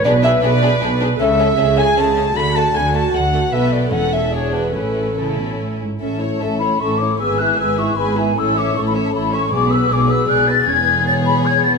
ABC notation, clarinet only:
X:1
M:3/4
L:1/8
Q:1/4=154
K:A
V:1 name="Clarinet"
d e d3 z | e3 g a2 | b a g a f2 | e d f e c B |
B2 A2 z2 | z6 | z6 | z6 |
z6 | [K:E] z6 |]